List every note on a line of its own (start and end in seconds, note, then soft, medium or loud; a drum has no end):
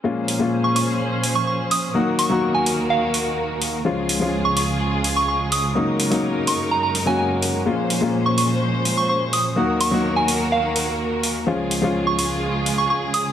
0.04 0.37 A#2 medium
0.04 1.93 A#2 medium
0.04 1.93 F3 medium
0.04 0.37 G#3 medium
0.04 0.37 A#3 medium
0.04 1.93 C#4 medium
0.04 0.37 C#4 medium
0.04 0.38 F4 medium
0.04 1.93 G#4 medium
0.04 1.93 C5 medium
0.28 open hi-hat medium
0.39 1.91 A#2 medium
0.39 1.92 G#3 medium
0.39 1.92 A#3 medium
0.39 1.92 C#4 medium
0.39 1.93 F4 medium
0.64 0.72 C#6 medium
0.76 0.83 C#6 medium
0.76 open hi-hat medium
1.24 open hi-hat medium
1.35 1.43 C#6 medium
1.47 1.55 C#6 medium
1.71 2.00 D#6 medium
1.71 open hi-hat medium
1.94 3.84 D#2 medium
1.94 3.84 D#3 medium
1.94 2.27 F#3 medium
1.94 2.28 A#3 medium
1.94 3.84 A#3 medium
1.94 2.28 D#4 medium
1.94 3.84 F#4 medium
1.94 2.28 F#4 medium
1.94 3.84 A#4 medium
2.19 2.52 C#6 medium
2.19 open hi-hat loud
2.29 3.82 F#3 medium
2.29 3.82 A#3 medium
2.29 3.83 D#4 medium
2.29 3.83 F#4 medium
2.54 2.66 G#5 medium
2.66 open hi-hat loud
2.90 3.26 F5 medium
3.14 open hi-hat medium
3.62 open hi-hat medium
3.85 5.74 C#2 medium
3.85 7.63 C#3 medium
3.85 4.18 F3 medium
3.85 4.18 G#3 medium
3.85 9.53 G#3 medium
3.85 4.18 C#4 medium
3.85 5.74 F4 medium
3.85 4.18 F4 medium
3.85 5.74 G#4 medium
4.09 open hi-hat loud
4.20 5.72 F3 medium
4.20 5.73 G#3 medium
4.20 5.73 C#4 medium
4.20 5.74 F4 medium
4.45 4.53 C#6 medium
4.57 4.64 C#6 medium
4.57 open hi-hat loud
5.04 open hi-hat loud
5.16 5.24 C#6 medium
5.28 5.36 C#6 medium
5.52 5.81 D#6 medium
5.52 open hi-hat loud
5.75 7.64 F#2 medium
5.75 6.08 F#3 medium
5.75 6.09 A#3 medium
5.75 6.09 C#4 medium
5.75 7.64 D#4 medium
5.75 6.09 D#4 medium
5.75 7.64 A#4 medium
6.00 open hi-hat loud
6.10 7.04 F#3 medium
6.10 7.04 A#3 medium
6.10 7.05 C#4 medium
6.10 7.05 D#4 medium
6.10 open hi-hat medium
6.47 6.59 C#6 medium
6.47 open hi-hat loud
6.71 6.79 A#5 medium
6.83 6.91 A#5 medium
6.95 open hi-hat medium
7.06 7.63 F#3 medium
7.06 7.63 A#3 medium
7.06 7.64 C#4 medium
7.06 7.64 F#4 medium
7.06 7.15 G#5 medium
7.19 7.26 G#5 medium
7.42 open hi-hat medium
7.66 7.99 A#2 medium
7.66 9.55 A#2 medium
7.66 9.55 F3 medium
7.66 7.99 G#3 medium
7.66 7.99 A#3 medium
7.66 9.55 C#4 medium
7.66 7.99 C#4 medium
7.66 7.99 F4 medium
7.66 9.55 C5 medium
7.90 open hi-hat medium
8.01 9.53 A#2 medium
8.01 9.54 G#3 medium
8.01 9.54 A#3 medium
8.01 9.54 C#4 medium
8.01 9.55 F4 medium
8.26 8.33 C#6 medium
8.38 8.45 C#6 medium
8.38 open hi-hat loud
8.85 open hi-hat medium
8.97 9.05 C#6 medium
9.09 9.17 C#6 medium
9.33 9.62 D#6 medium
9.33 open hi-hat medium
9.56 11.45 D#2 medium
9.56 11.45 D#3 medium
9.56 9.89 F#3 medium
9.56 9.89 A#3 medium
9.56 11.45 A#3 medium
9.56 9.90 D#4 medium
9.56 11.45 F#4 medium
9.56 9.90 F#4 medium
9.56 11.45 A#4 medium
9.81 10.14 C#6 medium
9.81 open hi-hat medium
9.91 11.44 F#3 medium
9.91 11.44 A#3 medium
9.91 11.45 D#4 medium
9.91 11.45 F#4 medium
10.16 10.28 G#5 medium
10.28 open hi-hat loud
10.52 10.88 F5 medium
10.76 open hi-hat medium
11.23 open hi-hat medium
11.47 13.32 C#2 medium
11.47 13.32 C#3 medium
11.47 11.80 F3 medium
11.47 11.80 G#3 medium
11.47 13.32 G#3 medium
11.47 11.80 C#4 medium
11.47 13.32 F4 medium
11.47 11.80 F4 medium
11.47 13.32 G#4 medium
11.71 open hi-hat medium
11.82 13.32 F3 medium
11.82 13.32 G#3 medium
11.82 13.32 C#4 medium
11.82 13.32 F4 loud
12.07 12.14 C#6 medium
12.19 12.26 C#6 medium
12.19 open hi-hat loud
12.66 open hi-hat medium
12.78 12.86 C#6 medium
12.90 12.98 C#6 medium
13.14 13.32 D#6 medium
13.14 open hi-hat medium